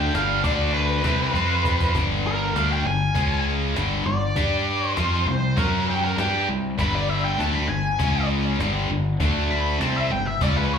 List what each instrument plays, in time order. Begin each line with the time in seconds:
Already playing: fingered electric bass D2, distorted electric guitar D3 A3 D4, lead electric guitar G5
0.14 fingered electric bass G1, distorted electric guitar G2 D3 G3, lead electric guitar F5, cajon slap
0.43 fingered electric bass D2, distorted electric guitar D3 A3 D4, lead electric guitar D5, cajon bass
0.74 lead electric guitar B4
1.03 fingered electric bass C2, distorted electric guitar C3 G3 C4, cajon bass
1.33 fingered electric bass F2, distorted electric guitar F3 C4 F4, cajon slap
1.65 cajon bass
1.80 cajon bass
1.94 fingered electric bass G1, distorted electric guitar G2 D3 G3, cajon bass
2.26 lead electric guitar A#4
2.54 fingered electric bass D2, distorted electric guitar D3 A3 D4, lead electric guitar F5, cajon slap
2.72 lead electric guitar G5
2.84 fingered electric bass G1, distorted electric guitar G2 D3, lead electric guitar G#5
3.15 fingered electric bass C#2, distorted electric guitar C#3 G#3 C#4, cajon bass
3.75 fingered electric bass G1, distorted electric guitar G2 D3 G3, cajon slap
4.06 fingered electric bass G1, distorted electric guitar G2 D3, lead electric guitar D5
4.36 fingered electric bass G2, distorted electric guitar G3 D4 G4, cajon bass
4.88 lead electric guitar C5
4.97 fingered electric bass F2, distorted electric guitar F3 C4 F4, cajon slap
5.26 fingered electric bass C2, distorted electric guitar C3 G3, lead electric guitar C5
5.56 fingered electric bass F#2, distorted electric guitar F#3 C#4 F#4, lead electric guitar A#4, cajon bass
5.90 lead electric guitar G4
6.04 lead electric guitar A#4
6.18 fingered electric bass G2, distorted electric guitar G3 D4 G4, lead electric guitar G4, cajon slap
6.48 fingered electric bass C2, distorted electric guitar C3 G3
6.78 fingered electric bass G1, distorted electric guitar G2 D3 G3, lead electric guitar B4, cajon bass
6.95 lead electric guitar D5
7.09 lead electric guitar E5
7.24 lead electric guitar G5
7.37 fingered electric bass D2, distorted electric guitar D3 A3 D4, lead electric guitar A5, cajon slap
7.54 lead electric guitar B5
7.68 fingered electric bass G1, distorted electric guitar G2 D3, lead electric guitar G#5
7.99 fingered electric bass C#2, distorted electric guitar C#3 G#3 C#4, cajon bass
8.59 fingered electric bass G1, distorted electric guitar G2 D3 G3, cajon slap
8.89 fingered electric bass G1, distorted electric guitar G2 D3
9.20 fingered electric bass D2, distorted electric guitar D3 A3 D4, cajon bass
9.51 lead electric guitar B5
9.80 fingered electric bass C2, distorted electric guitar C3 G3 C4, lead electric guitar A5, cajon slap
9.96 lead electric guitar E5
10.10 fingered electric bass G1, distorted electric guitar G2 D3, lead electric guitar G5
10.26 lead electric guitar E5
10.41 fingered electric bass C#2, distorted electric guitar C#3 G#3 C#4, lead electric guitar D5, cajon bass
10.56 lead electric guitar B4
10.74 lead electric guitar C#5